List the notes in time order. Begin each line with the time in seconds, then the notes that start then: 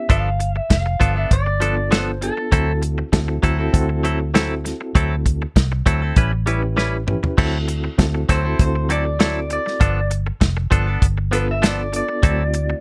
Already playing: E5
0.09 G1 F3 B3 D4 A4 F5, kick, closed hi-hat
0.40 muted clean electric guitar stroke, closed hi-hat
0.55 E5, muted clean electric guitar stroke
0.70 F1 F5, muted clean electric guitar stroke, kick, snare, closed hi-hat
0.86 muted clean electric guitar stroke
1.00 G1 F3 B3 D4 A4, kick, closed hi-hat
1.16 B3 D4 A4 E5
1.31 G1 D5, kick, closed hi-hat
1.46 muted clean electric guitar stroke
1.60 F3 B3 D4 F4 A4, closed hi-hat
1.77 muted clean electric guitar stroke
1.91 F3 B3 D4 A4, snare, closed hi-hat
1.99 C5
2.21 B3 D4 F4 A4, muted clean electric guitar stroke, closed hi-hat
2.37 muted clean electric guitar stroke
2.52 D2 F#3 C4 E4 F#4 A4, kick, closed hi-hat
2.82 muted clean electric guitar stroke, closed hi-hat
2.98 muted clean electric guitar stroke
3.12 D2 C4 E4 F#4 A4, muted clean electric guitar stroke, kick, snare, closed hi-hat
3.28 muted clean electric guitar stroke
3.43 D2 F#3 C4 E4 A4, kick, closed hi-hat
3.59 C4 E4 F#4 A4
3.73 D2 C4 E4 F#4 A4, kick, closed hi-hat
3.89 muted clean electric guitar stroke
4.03 F#3 C4 E4 A4, closed hi-hat
4.20 muted clean electric guitar stroke
4.34 F#3 C4 E4 F#4 A4, snare, closed hi-hat
4.65 muted clean electric guitar stroke, snare, closed hi-hat
4.81 muted clean electric guitar stroke
4.95 D2 F#3 C4 E4 A4, kick, closed hi-hat
5.26 muted clean electric guitar stroke, kick, closed hi-hat
5.42 muted clean electric guitar stroke
5.56 C2, muted clean electric guitar stroke, kick, snare, closed hi-hat
5.72 muted clean electric guitar stroke
5.86 D2 F#3 C4 E4 A4, kick, closed hi-hat
6.02 C4 E4 A4
6.16 A1 G3 C#4 E4 B4, kick, closed hi-hat
6.33 muted clean electric guitar stroke
6.46 G3 C#4 E4 G4 B4, closed hi-hat
6.62 muted clean electric guitar stroke
6.77 G3 C#4 E4 B4, snare
7.07 C#4 E4 G4 B4, muted clean electric guitar stroke, mid tom
7.23 muted clean electric guitar stroke, floor tom
7.37 D2 F#3 C4 E4 F#4 A4, kick, crash
7.68 muted clean electric guitar stroke, closed hi-hat
7.84 muted clean electric guitar stroke
7.98 D2 C4 E4 F#4 A4, muted clean electric guitar stroke, kick, snare, closed hi-hat
8.15 muted clean electric guitar stroke
8.29 D2 F#3 C4 E4 A4 C5, kick, closed hi-hat
8.45 C4 E4 F#4 A4
8.59 D2 C4 E4 F#4 A4 C5, kick, closed hi-hat
8.75 muted clean electric guitar stroke
8.89 F#3 C4 E4 A4 D5, closed hi-hat
9.05 muted clean electric guitar stroke
9.19 F#3 C4 E4 F#4 A4, snare, closed hi-hat
9.50 D5, muted clean electric guitar stroke, closed hi-hat
9.66 muted clean electric guitar stroke, snare
9.80 G1 F3 B3 D4 A4, kick, closed hi-hat
10.10 muted clean electric guitar stroke, closed hi-hat
10.27 muted clean electric guitar stroke
10.41 F1, muted clean electric guitar stroke, kick, snare, closed hi-hat
10.57 muted clean electric guitar stroke
10.71 G1 F3 B3 D4 A4, kick, closed hi-hat
10.87 B3 D4 A4
11.02 G1, kick, closed hi-hat
11.18 muted clean electric guitar stroke
11.31 F3 B3 D4 F4 A4 B4, closed hi-hat
11.48 E5, muted clean electric guitar stroke
11.62 F3 B3 D4 A4 D5, snare, closed hi-hat
11.92 B3 D4 F4 A4, muted clean electric guitar stroke, closed hi-hat
11.96 D5
12.09 muted clean electric guitar stroke
12.22 D2 F#3 A3 C4 E4 F#4 A4, kick, closed hi-hat
12.54 muted clean electric guitar stroke, closed hi-hat
12.70 muted clean electric guitar stroke